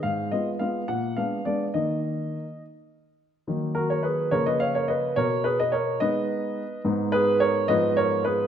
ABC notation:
X:1
M:6/8
L:1/16
Q:3/8=71
K:Ebm
V:1 name="Grand piano"
f2 e2 f2 g2 f2 =d2 | e6 z6 | z2 [GB] [Bd] [Ac]2 [Bd] [ce] [df] [Bd] [ce]2 | [Bd]2 [Ac] [ce] [Bd]2 [ce]6 |
z2 [Ac]2 [Bd]2 [ce]2 [Bd]2 [Ac]2 |]
V:2 name="Grand piano"
A,,2 [A,CF]2 [A,CF]2 B,,2 [A,C=D]2 [A,CD]2 | [E,B,E]6 z6 | [E,G,B,E]6 [D,F,B,F]6 | C,6 [A,CE]6 |
[A,,A,CE]6 [A,,F,CF]6 |]